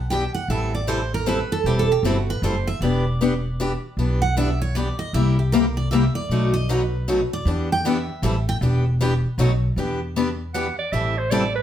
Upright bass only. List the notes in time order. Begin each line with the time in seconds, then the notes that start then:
Already playing: B1
0.48 A1
1.64 E1
2.03 G1
2.42 F#1
2.81 E1
3.97 B1
5.13 C2
6.29 B1
7.45 E2
8.22 A1
8.61 E1
9.38 B1
9.76 E2
10.92 A1